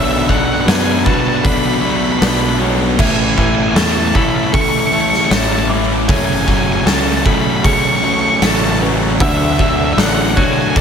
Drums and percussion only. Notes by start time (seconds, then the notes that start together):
0.29 kick
0.68 snare, open hi-hat
1.06 kick
1.45 kick, open hi-hat
2.22 snare, open hi-hat
2.99 kick, crash
3.38 kick
3.76 snare, open hi-hat
4.15 kick
4.54 kick, open hi-hat
5.13 snare
5.31 snare, open hi-hat
6.09 kick, open hi-hat
6.48 kick, snare
6.87 snare, open hi-hat
7.26 kick
7.64 kick, open hi-hat
8.42 snare, open hi-hat
9.20 kick, open hi-hat
9.59 kick
9.98 snare, open hi-hat
10.37 kick
10.76 kick, open hi-hat